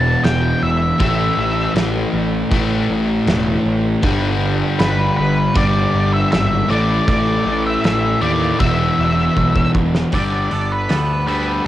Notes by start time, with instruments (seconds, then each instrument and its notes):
Already playing: picked electric bass E1, overdriven electric guitar E2 B2 E3, distorted electric guitar E2 B2 E3, lead electric guitar A5
0.24 picked electric bass E1, lead electric guitar G5, snare, crash
0.63 picked electric bass E1, lead electric guitar E5
0.98 picked electric bass A1, overdriven electric guitar A2 E3 A3, lead electric guitar E5, kick, crash
1.38 picked electric bass A1
1.74 picked electric bass A1, snare, crash
2.13 picked electric bass A1
2.51 picked electric bass A1, overdriven electric guitar A2 E3 A3, kick, crash
2.90 picked electric bass A1
3.27 picked electric bass E1, snare, crash
3.66 picked electric bass A1
4.03 picked electric bass G1, overdriven electric guitar G2 D3 G3, kick, crash
4.79 picked electric bass G1, lead electric guitar B4, snare, crash
5.17 picked electric bass G1, lead electric guitar B4
5.54 picked electric bass G1, overdriven electric guitar G2 D3 G3, lead electric guitar D5, kick, crash
5.94 picked electric bass G1
6.13 lead electric guitar E5
6.32 picked electric bass G#1, lead electric guitar E5, snare, crash
6.69 picked electric bass A1, overdriven electric guitar A2 E3 A3, lead electric guitar D5
7.08 picked electric bass A1, lead electric guitar D5, kick, crash
7.46 picked electric bass A1
7.67 lead electric guitar E5
7.84 picked electric bass A1, lead electric guitar E5, snare, crash
8.21 picked electric bass D#2, overdriven electric guitar A2 E3 A3, lead electric guitar D5
8.59 picked electric bass E1, overdriven electric guitar E2 B2 E3, lead electric guitar E5, kick, crash
8.99 picked electric bass E1
9.37 picked electric bass B1, kick
9.56 kick
9.75 picked electric bass E1, kick
9.95 snare
10.12 picked electric bass G1, overdriven electric guitar G2 D3 G3, clean electric guitar G3 B3 D4 A4, lead electric guitar D5, kick, open hi-hat
10.31 clean electric guitar B3 D4 A4
10.50 picked electric bass G1, overdriven electric guitar G2 D3, clean electric guitar G3 B3 D4 A4, open hi-hat
10.72 lead electric guitar B4
10.89 picked electric bass D2, overdriven electric guitar G2 D3, clean electric guitar G3 B3 D4 A4, snare, open hi-hat
11.26 overdriven electric guitar G2 D3 G3, clean electric guitar G3 B3 D4 A4, lead electric guitar B4, open hi-hat
11.45 clean electric guitar B3 D4 A4